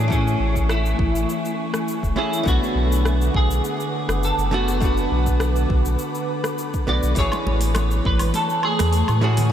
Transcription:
Already playing: A2 A3 D4 G#5 C#6
0.08 E3 A3 C#4, kick
0.12 G#4, cabasa
0.28 cabasa
0.40 A1
0.56 kick, cabasa
0.69 E4, cross-stick, cabasa
0.86 cabasa
0.99 A1, kick
1.14 A1, cabasa
1.29 cabasa
1.45 cabasa
1.74 cross-stick, cabasa
1.88 cabasa
2.03 E1, kick, cabasa
2.16 E3 A3 C#4 E4 G#4
2.33 cabasa
2.43 B1 D3 A3 B3 B4 F#5 D6, kick, cabasa
2.48 F#4
2.63 cabasa
2.75 B1
2.92 cabasa
3.05 cross-stick, cabasa
3.21 cabasa
3.34 B1 G#4, kick
3.50 B1, cabasa
3.65 cabasa
3.80 cabasa
4.08 F#1, cross-stick, cabasa
4.23 A4, cabasa
4.38 F#1, cabasa
4.51 D3 A3 B3 F#4
4.68 cabasa
4.80 D3 A3 B3 B5, kick, cabasa
4.85 F#4
4.97 cabasa
5.11 B1
5.27 kick, cabasa
5.40 cross-stick, cabasa
5.56 cabasa
5.70 B1, kick
5.85 B1, cabasa
5.99 cabasa
6.15 cabasa
6.44 cross-stick, cabasa
6.58 cabasa
6.74 kick, cabasa
6.87 B1 D3 A3 B3 F#4 D5
7.03 B1, cabasa
7.15 A1 E3 A3 C#4 C#5 G#5 C#6, kick, open hi-hat, cabasa
7.20 G#4
7.32 muted conga, cabasa, low woodblock
7.46 A1, high conga
7.61 open hi-hat, cabasa
7.75 cross-stick, open hi-hat, muted conga, cabasa, low woodblock
7.91 cabasa
8.05 A1 B4, kick
8.19 A1, open hi-hat, high conga, cabasa, low woodblock
8.34 A4, open hi-hat, muted conga, cabasa
8.50 cabasa
8.63 G#4, low woodblock
8.79 E2, cross-stick, open hi-hat, muted conga, cabasa
8.93 open hi-hat, cabasa
9.08 A2, high conga, cabasa, low woodblock
9.21 E3 A3 C#4 F#4 G#4
9.37 open hi-hat, muted conga, low conga, cabasa

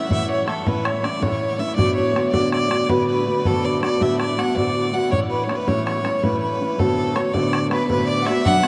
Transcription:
Already playing: E5
0.10 A2 E3 A3 C#4 E4 E5, bodhran
0.31 C#5
0.47 E3 A3 C#4 E4 A4, bodhran
0.66 A2 E3 A3 C#4 E4 B4, bodhran
0.85 C#5, bodhran
1.03 E3 A3 C#4 E4 D5, bodhran
1.21 A2 E3 A3 C#4 E4 C#5, bodhran
1.32 bodhran
1.58 E3 A3 C#4 E4 E5
1.76 D2 A2 D3 A3 B3 F#4 D5, bodhran
1.96 C#5, bodhran
2.14 D3 A3 B3 F#4, bodhran
2.33 D2 A2 D3 A3 B3 F#4 D5, bodhran
2.52 D5, bodhran
2.70 D3 A3 B3 F#4, bodhran
2.88 D2 A2 D3 A3 B3 F#4 B4, bodhran
2.99 bodhran
3.08 B4
3.25 D3 A3 B3 F#4
3.44 D2 A2 D3 A3 B3 F#4 A4, bodhran
3.64 D5, bodhran
3.80 D3 A3 B3 F#4 D5, bodhran
4.00 D2 A2 D3 A3 B3 F#4 E5, bodhran
4.20 D5, bodhran
4.37 D3 A3 B3 F#4 F#5, bodhran
4.55 D2 A2 D3 A3 B3 F#4 D5, bodhran
4.66 bodhran
4.92 D3 A3 B3 F#4 F#5
5.11 A2 E3 A3 C#4 E4 C#5, bodhran
5.31 B4, bodhran
5.44 C#5
5.49 E3 A3 C#4 E4, bodhran
5.55 B4
5.67 A2 E3 A3 C#4 E4 C#5, bodhran
5.86 C#5, bodhran
6.04 E3 A3 C#4 E4, bodhran
6.19 A2 C#5
6.23 E3 A3 C#4 E4 B4, bodhran
6.33 bodhran
6.41 B4
6.60 E3 A3 C#4 E4
6.78 D2 A2 D3 A3 B3 F#4 A4, bodhran
6.97 bodhran
7.16 D3 A3 B3 F#4 C#5, bodhran
7.34 D2 A2 D3 A3 B3 F#4 D5, bodhran
7.53 bodhran
7.70 D3 A3 B3 F#4 B4, bodhran
7.88 D2 A2 D3 A3 B3 F#4 B4, bodhran
7.99 bodhran
8.08 D5
8.22 D3 E5 F#5
8.27 A3 B3 F#4 E5, bodhran
8.45 B2 F#3 B3 C#4 D4 F#5, bodhran
8.63 F#3 B3, bodhran

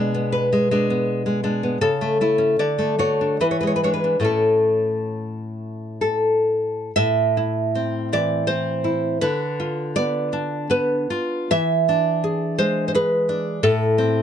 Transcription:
Already playing: B2 G#3 D4 D5
0.14 B3
0.32 B4
0.53 G#3
0.71 G#3 D4
0.90 B3
1.26 G#3
1.44 G#3 D4
1.63 B3
1.81 C#3 A4
2.01 A3
2.21 A3 E4
2.38 C#4
2.59 D3 D5
2.79 A3
2.99 A3 F#4 C#5
3.21 D4
3.41 E3 B4
3.51 C#5
3.61 G#3 B4
3.67 C#5
3.76 B4
3.84 G#3 D4 C#5
3.94 B4
4.04 D4
4.20 A2 A3 C#4
4.24 A4
6.01 A4
6.96 A2 E5
7.37 E4
7.75 C4
8.13 E3 D5
8.47 C4 C5
8.84 E4
9.21 D3 B4
9.60 F4
9.96 B3 D5
10.33 D4
10.70 B3 B4
11.10 F4
11.51 E3 E5
11.89 D4
12.24 G#4
12.58 G#3 C5
12.88 C5
12.95 G#4 B4
13.29 D4
13.63 A2 A4
13.98 C4

